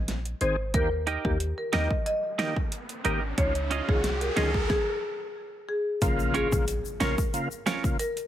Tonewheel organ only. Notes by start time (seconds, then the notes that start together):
0.41 D#3 C4 G#4
0.74 D#3 A#3 G4
1.24 D#3 A#3 G4
1.73 D#3 A#3 G4
2.39 D#3 A#3 G4
3.05 D#3 A#3 G4
3.38 D#3 C#4 F4
3.88 D#3 C#4 F4
4.37 D#3 C#4 F4
6.01 C#3 A#3 F4
6.52 C#3 A#3 F4
7.00 C#3 A#3 F4
7.33 C#3 A#3 F4
7.84 C#3 A#3 F4